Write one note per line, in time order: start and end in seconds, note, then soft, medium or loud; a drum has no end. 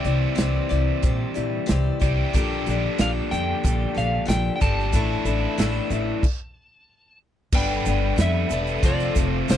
0.00 2.00 C3 medium
0.00 2.00 E3 loud
0.00 2.00 G3 medium
0.00 2.00 C4 loud
0.00 2.01 G4 loud
0.00 0.34 E5 medium
0.05 0.25 C2 medium
0.05 0.34 E4 soft
0.05 0.35 G4 soft
0.05 0.36 D5 medium
0.05 closed hi-hat medium
0.35 0.58 C2 medium
0.35 0.70 C4 medium
0.35 0.69 E4 medium
0.35 0.69 G4 medium
0.35 0.68 D5 medium
0.35 snare loud
0.35 closed hi-hat loud
0.69 0.91 C2 medium
0.69 1.02 E4 soft
0.69 1.03 G4 soft
0.69 1.03 D5 medium
0.69 closed hi-hat medium
1.03 1.23 A#2 medium
1.03 1.36 C4 medium
1.03 1.35 E4 medium
1.03 1.34 G4 medium
1.03 1.33 D5 medium
1.03 kick loud
1.03 closed hi-hat medium
1.34 1.57 A#2 medium
1.34 1.65 E4 soft
1.34 1.66 G4 soft
1.34 1.66 D5 medium
1.34 closed hi-hat medium
1.66 1.89 C2 medium
1.66 2.00 C4 medium
1.66 2.00 E4 medium
1.66 1.99 G4 medium
1.66 1.98 D5 medium
1.66 snare loud
1.66 closed hi-hat medium
2.00 2.21 C2 medium
2.00 2.33 C3 medium
2.00 2.33 G3 medium
2.00 2.33 C4 medium
2.00 2.34 E4 medium
2.00 2.33 G4 medium
2.00 2.33 D5 medium
2.00 kick medium
2.00 closed hi-hat medium
2.04 2.33 E3 medium
2.33 2.54 A#1 medium
2.33 2.67 A#2 medium
2.33 4.60 D3 medium
2.33 2.66 G3 medium
2.33 2.67 D4 medium
2.33 2.66 G4 loud
2.33 2.66 A4 medium
2.33 kick medium
2.33 closed hi-hat medium
2.33 shaker medium
2.66 2.86 A#1 medium
2.66 2.99 D4 medium
2.66 2.99 G4 medium
2.66 2.99 A4 medium
2.66 closed hi-hat medium
2.66 shaker medium
2.98 3.19 A#1 loud
2.98 3.32 A#2 medium
2.98 3.32 G3 medium
2.98 3.33 D4 medium
2.98 3.30 G4 medium
2.98 3.30 A4 medium
2.98 3.10 F5 medium
2.98 snare loud
2.98 closed hi-hat medium
2.98 shaker medium
3.31 3.52 F2 medium
3.31 3.63 D4 soft
3.31 3.64 G4 medium
3.31 3.64 A4 medium
3.31 3.97 G5 loud
3.31 closed hi-hat medium
3.31 shaker medium
3.64 3.84 A#1 medium
3.64 3.96 G3 medium
3.64 3.96 D4 medium
3.64 3.95 G4 medium
3.64 3.93 A4 medium
3.64 kick loud
3.64 closed hi-hat medium
3.64 shaker medium
3.95 4.16 A#1 medium
3.95 4.26 D4 soft
3.95 4.27 G4 soft
3.95 4.27 A4 medium
3.95 4.28 F5 medium
3.95 closed hi-hat medium
3.99 shaker medium
4.26 4.48 A#1 loud
4.26 4.60 A#2 medium
4.26 4.60 G3 medium
4.26 4.61 D4 medium
4.26 4.60 G4 medium
4.26 4.59 A4 medium
4.26 4.53 G5 loud
4.26 closed hi-hat loud
4.26 shaker medium
4.30 snare loud
4.56 4.61 G5 medium
4.60 4.93 G1 loud
4.60 4.93 A#2 medium
4.60 4.93 D3 medium
4.60 4.92 G3 medium
4.60 4.93 D4 medium
4.60 4.94 G4 soft
4.60 4.94 A4 medium
4.60 7.18 A5 medium
4.60 kick medium
4.60 closed hi-hat medium
4.60 shaker medium
4.79 snare soft
4.92 5.13 A1 loud
4.92 5.26 A2 medium
4.92 5.26 E3 medium
4.92 5.26 A3 medium
4.92 5.25 D4 medium
4.92 5.25 E4 medium
4.92 5.24 A4 medium
4.92 kick loud
4.92 closed hi-hat medium
4.92 shaker medium
5.25 5.45 A1 medium
5.25 5.58 A3 soft
5.25 5.58 D4 soft
5.25 5.58 E4 medium
5.25 5.59 A4 medium
5.25 closed hi-hat medium
5.25 shaker medium
5.58 5.79 A1 medium
5.58 5.91 A2 medium
5.58 5.91 E3 medium
5.58 5.91 A3 medium
5.58 5.91 D4 medium
5.58 5.90 E4 medium
5.58 5.89 A4 loud
5.58 snare loud
5.58 closed hi-hat medium
5.58 shaker medium
5.90 6.11 A1 medium
5.90 6.25 A3 soft
5.90 6.25 D4 medium
5.90 6.24 E4 medium
5.90 6.24 A4 medium
5.90 closed hi-hat medium
5.90 shaker medium
6.23 kick loud
6.23 crash medium
7.52 7.78 G1 loud
7.52 7.86 G3 medium
7.52 7.87 B3 medium
7.52 7.85 D4 medium
7.52 7.84 A4 medium
7.52 9.57 A4 medium
7.52 8.22 G5 loud
7.52 8.84 G5 medium
7.52 8.83 B5 medium
7.52 kick loud
7.52 crash loud
7.52 shaker medium
7.56 8.51 B4 medium
7.85 8.11 G1 medium
7.85 8.17 B3 soft
7.85 8.17 D4 medium
7.85 8.18 A4 medium
7.85 closed hi-hat medium
7.85 shaker loud
8.16 8.43 F2 loud
8.16 8.50 G3 medium
8.16 8.51 B3 soft
8.16 8.50 D4 medium
8.16 8.48 A4 medium
8.16 snare loud
8.16 closed hi-hat loud
8.16 shaker medium
8.21 8.81 E5 medium
8.49 8.76 E1 medium
8.49 8.83 B3 soft
8.49 8.83 D4 soft
8.49 8.82 A4 medium
8.49 8.83 B4 medium
8.49 closed hi-hat medium
8.49 shaker loud
8.54 8.83 G3 medium
8.67 closed hi-hat soft
8.67 shaker soft
8.83 9.08 F1 medium
8.83 9.16 F2 medium
8.83 9.16 D3 medium
8.83 9.15 F3 medium
8.83 9.15 A3 medium
8.83 9.14 C4 medium
8.83 9.57 F4 medium
8.83 9.14 A4 medium
8.83 9.32 D5 medium
8.83 9.57 F5 medium
8.83 9.57 D6 medium
8.83 kick loud
8.83 closed hi-hat medium
8.83 shaker medium
9.00 closed hi-hat soft
9.15 9.41 F1 medium
9.15 9.47 F3 soft
9.15 9.48 A3 soft
9.15 9.49 C4 soft
9.15 9.48 A4 soft
9.15 kick medium
9.15 closed hi-hat medium
9.15 shaker loud
9.32 9.46 C5 medium
9.48 9.57 F1 loud
9.48 9.57 F3 medium
9.48 9.57 A3 medium
9.48 9.57 C4 medium
9.48 9.57 A4 medium
9.48 9.57 C5 loud
9.48 snare loud
9.48 closed hi-hat loud
9.48 shaker medium